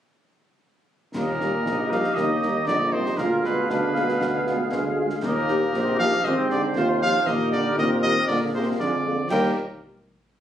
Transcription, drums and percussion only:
1.14 concert bass drum, snare, crash
1.41 snare
1.66 concert bass drum, snare
1.92 snare
2.04 snare
2.17 concert bass drum, snare
2.43 snare
2.68 concert bass drum, snare
3.06 snare
3.18 concert bass drum, snare
3.44 snare
3.70 concert bass drum, snare
3.96 snare
4.09 snare
4.21 concert bass drum, snare
4.47 snare
4.72 concert bass drum, snare
5.10 snare
5.22 concert bass drum, snare, crash
5.48 snare
5.74 concert bass drum, snare
6.00 snare
6.12 snare
6.25 concert bass drum, snare
6.50 snare
6.76 concert bass drum, snare
7.14 snare
7.27 concert bass drum, snare
7.52 snare
7.78 concert bass drum, snare
8.04 snare
8.16 snare
8.29 concert bass drum, snare
8.80 concert bass drum, snare
9.30 concert bass drum, snare, crash

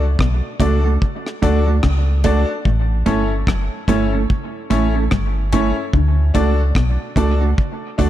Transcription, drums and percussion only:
0.19 kick, cross-stick
0.60 kick, closed hi-hat
1.02 kick
1.26 cross-stick
1.43 kick, closed hi-hat
1.83 kick, cross-stick
2.24 kick, closed hi-hat
2.65 kick
3.06 kick, closed hi-hat
3.47 kick, cross-stick
3.88 kick, closed hi-hat
4.30 kick
4.71 kick, closed hi-hat
5.11 kick, cross-stick
5.53 kick, closed hi-hat
5.93 kick
6.35 kick, closed hi-hat
6.75 kick, cross-stick
7.16 kick, closed hi-hat
7.58 kick
7.99 kick, closed hi-hat

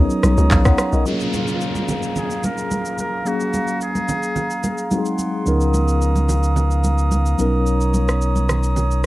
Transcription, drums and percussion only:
0.10 shaker
0.23 cross-stick, high conga, shaker
0.38 shaker
0.51 kick, clap, high conga, shaker
0.65 kick, cross-stick, shaker
0.78 cross-stick, high conga, shaker
0.93 shaker
1.06 shaker
1.20 shaker
1.33 high conga, shaker
1.48 shaker
1.61 shaker
1.75 high conga, shaker
1.88 low conga, shaker
2.03 shaker
2.16 low conga, shaker
2.30 shaker
2.43 high conga, shaker
2.58 shaker
2.71 high conga, shaker
2.85 shaker
2.98 high conga, shaker
3.26 shaker
3.40 shaker
3.53 high conga, shaker
3.68 shaker
3.81 shaker
3.95 high conga, shaker
4.09 low conga, shaker
4.23 shaker
4.36 low conga, shaker
4.50 shaker
4.63 high conga, shaker
4.78 shaker
4.91 high conga, shaker
5.06 shaker
5.19 high conga, shaker
5.46 shaker
5.61 shaker
5.74 high conga, shaker
5.88 shaker
6.02 shaker
6.16 high conga, shaker
6.29 low conga, shaker
6.43 shaker
6.56 low conga, shaker
6.71 shaker
6.84 high conga, shaker
6.98 shaker
7.12 high conga, shaker
7.26 shaker
7.39 high conga, shaker
7.66 shaker
7.81 shaker
7.94 high conga, shaker
8.08 cross-stick, shaker
8.22 shaker
8.36 high conga, shaker
8.49 cross-stick, low conga, shaker
8.63 shaker
8.76 low conga, shaker
8.91 shaker

